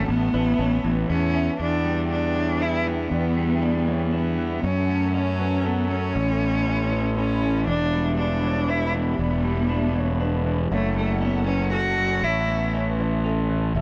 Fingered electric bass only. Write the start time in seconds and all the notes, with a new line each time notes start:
0.09 A1
0.34 A1
0.59 A1
0.84 A1
1.10 E2
1.59 E2
3.11 E2
4.64 F#2
6.15 A1
7.67 E1
9.19 E1
10.71 F#1
12.23 A1
13.75 E1